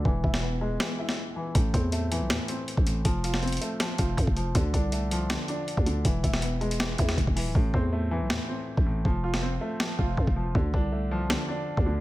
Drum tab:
HH |--------------------------------|x---x---x---x---x---x---x---x---|x---x---xxxxx---x---x---x---x---|x---x---x---x---x---x---x---x---|
SD |------o---------o-----o---------|----------------o---------------|------o---------o---------------|----------------o---------------|
BD |o---o---------------------------|o---o---------------------o-----|o-------------------o---o-o-----|o---o---------------------o-----|

HH |x---x---x---x-x-x---x---x---o---|--------------------------------|--------------------------------|--------------------------------|
SD |------o---------o-----o---------|----------------o---------------|------o---------o---------------|----------------o---------------|
BD |o---o---------------o---o-o-----|o---o---------------------o-----|o-------------------o---o-o-----|o---o---------------------o-----|